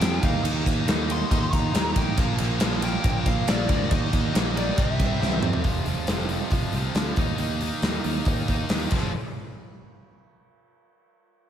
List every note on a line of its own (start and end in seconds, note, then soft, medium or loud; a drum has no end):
0.00 0.21 F2 medium
0.00 0.18 F2 medium
0.00 0.20 C3 medium
0.00 0.21 F3 loud
0.00 0.24 G5 loud
0.00 snare loud
0.00 ride loud
0.21 0.40 D#2 loud
0.21 0.42 D#3 loud
0.21 0.44 A#3 medium
0.21 0.43 D#4 loud
0.21 0.44 F5 medium
0.21 kick loud
0.21 ride medium
0.43 0.61 D#2 loud
0.43 0.85 D#3 loud
0.43 0.86 A#3 loud
0.43 0.86 D#4 loud
0.43 ride loud
0.66 0.83 D#2 medium
0.66 kick medium
0.66 ride medium
0.86 1.22 D#2 loud
0.86 1.07 D#3 loud
0.86 1.08 A#3 loud
0.86 1.07 D#4 loud
0.86 snare loud
0.86 ride loud
1.08 1.29 D#3 medium
1.08 1.30 A#3 loud
1.08 1.30 D#4 loud
1.08 1.53 C6 loud
1.08 ride medium
1.30 1.48 D#2 loud
1.30 1.72 D#3 medium
1.30 1.73 A#3 loud
1.30 1.73 D#4 loud
1.30 kick loud
1.30 ride loud
1.53 1.70 D#2 loud
1.53 1.98 A#5 loud
1.53 kick medium
1.53 ride medium
1.73 1.92 D#2 medium
1.73 1.93 D#3 medium
1.73 1.95 A#3 loud
1.73 1.94 D#4 loud
1.73 snare loud
1.73 ride loud
1.95 2.13 A1 loud
1.95 2.15 D#3 medium
1.95 2.16 A#3 loud
1.95 2.16 D#4 medium
1.95 2.17 G5 medium
1.95 kick loud
1.95 ride medium
2.16 2.35 A#1 medium
2.16 2.59 A#2 medium
2.16 2.59 F3 loud
2.16 2.60 A#3 loud
2.16 kick loud
2.16 ride loud
2.38 2.57 A#1 loud
2.38 ride medium
2.60 2.96 A#1 loud
2.60 2.79 A#2 medium
2.60 2.80 F3 loud
2.60 2.80 A#3 loud
2.60 snare loud
2.60 ride loud
2.80 3.02 A#2 medium
2.80 3.02 F3 loud
2.80 3.02 A#3 loud
2.80 3.26 G5 loud
2.80 ride medium
3.03 3.22 A#1 loud
3.03 3.45 A#2 loud
3.03 3.46 F3 loud
3.03 3.46 A#3 loud
3.03 kick loud
3.03 ride loud
3.26 3.43 A#1 loud
3.26 3.46 F5 loud
3.26 kick medium
3.26 ride medium
3.46 3.65 A#1 loud
3.46 3.68 A#2 medium
3.46 3.69 F3 medium
3.46 3.69 A#3 loud
3.46 3.93 D5 medium
3.46 snare loud
3.46 ride loud
3.69 3.86 D2 loud
3.69 3.89 A#2 medium
3.69 3.90 F3 medium
3.69 3.90 A#3 loud
3.69 kick loud
3.69 ride medium
3.91 4.08 D#2 loud
3.91 4.33 D#3 loud
3.91 4.33 A#3 loud
3.91 4.33 D#4 loud
3.91 4.32 D#5 medium
3.91 kick loud
3.91 ride loud
4.13 4.30 D#2 loud
4.13 kick medium
4.13 ride medium
4.34 4.69 A#1 loud
4.34 4.55 D#3 loud
4.34 4.55 A#3 loud
4.34 4.55 D#4 loud
4.34 snare loud
4.34 ride loud
4.56 4.76 D#3 medium
4.56 4.76 A#3 medium
4.56 4.77 D#4 medium
4.56 4.79 D5 loud
4.56 ride medium
4.78 4.95 C2 medium
4.78 5.19 C3 loud
4.78 5.20 G3 loud
4.78 5.20 C4 loud
4.78 5.39 E5 loud
4.78 kick loud
4.78 ride medium
4.99 5.17 C2 loud
4.99 kick medium
4.99 ride medium
5.21 5.39 C2 medium
5.21 5.40 C3 medium
5.21 5.41 G3 medium
5.21 5.41 C4 loud
5.21 snare medium
5.32 high tom medium
5.41 5.61 F2 loud
5.41 5.62 C3 medium
5.41 5.63 G3 medium
5.41 5.63 C4 medium
5.41 mid tom loud
5.53 floor tom loud
5.64 5.95 F1 medium
5.64 5.84 F2 medium
5.64 5.85 C3 medium
5.64 5.85 F3 loud
5.64 kick loud
5.64 open hi-hat medium
5.86 6.07 F2 medium
5.86 6.07 C3 medium
5.86 6.07 F3 medium
5.86 open hi-hat medium
6.07 6.39 F1 loud
6.07 6.29 F2 medium
6.07 6.30 C3 loud
6.07 6.30 F3 loud
6.07 snare loud
6.07 open hi-hat medium
6.29 6.51 F2 medium
6.29 6.51 C3 medium
6.29 6.51 F3 medium
6.29 open hi-hat medium
6.51 6.67 F1 medium
6.51 6.73 F2 medium
6.51 6.73 C3 loud
6.51 6.74 F3 medium
6.51 kick medium
6.51 open hi-hat medium
6.73 6.88 C2 medium
6.73 6.95 F2 medium
6.73 6.95 C3 medium
6.73 6.95 F3 medium
6.73 open hi-hat soft
6.95 7.10 D2 medium
6.95 7.16 F2 medium
6.95 7.16 C3 loud
6.95 7.17 F3 loud
6.95 snare loud
6.95 open hi-hat medium
7.16 7.32 D#2 loud
7.16 7.38 D#3 medium
7.16 7.38 A#3 loud
7.16 7.39 D#4 loud
7.16 kick loud
7.16 open hi-hat medium
7.38 7.70 D#2 medium
7.38 7.60 D#3 loud
7.38 7.61 A#3 loud
7.38 7.61 D#4 loud
7.38 open hi-hat medium
7.61 7.82 D#3 medium
7.61 7.82 A#3 medium
7.61 7.83 D#4 medium
7.61 open hi-hat medium
7.82 7.98 D#2 medium
7.82 8.04 D#3 medium
7.82 8.05 A#3 loud
7.82 8.05 D#4 loud
7.82 snare medium
7.82 open hi-hat medium
8.04 8.20 D#2 medium
8.04 8.25 D#3 medium
8.04 8.26 A#3 medium
8.04 8.26 D#4 medium
8.04 open hi-hat medium
8.25 8.42 D#2 medium
8.25 8.47 D#3 medium
8.25 8.48 A#3 loud
8.25 8.48 D#4 loud
8.25 kick loud
8.25 open hi-hat medium
8.48 8.64 D#2 medium
8.48 8.69 D#3 medium
8.48 8.70 A#3 medium
8.48 8.70 D#4 medium
8.48 kick medium
8.48 open hi-hat medium
8.69 8.85 D#2 medium
8.69 8.92 D#3 loud
8.69 8.92 A#3 loud
8.69 8.93 D#4 loud
8.69 snare loud
8.69 open hi-hat medium
8.91 9.12 F1 loud
8.91 9.09 F2 medium
8.91 9.10 C3 medium
8.91 9.10 F3 medium
8.91 kick loud
8.91 crash loud